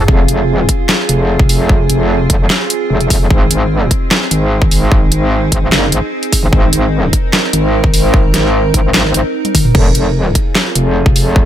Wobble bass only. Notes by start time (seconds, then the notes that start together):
0.08 F1
0.28 F1
1.09 F1
1.90 F1
2.30 F1
2.90 F1
3.10 F1
3.30 G#1
3.51 G#1
4.31 G#1
5.12 G#1
5.52 G#1
5.72 F#1
5.92 G#1
6.43 G#1
6.53 G#1
6.73 G#1
7.53 G#1
8.34 G#1
8.74 G#1
8.94 G#1
9.14 G#1
9.75 F1
9.95 F1
10.75 F1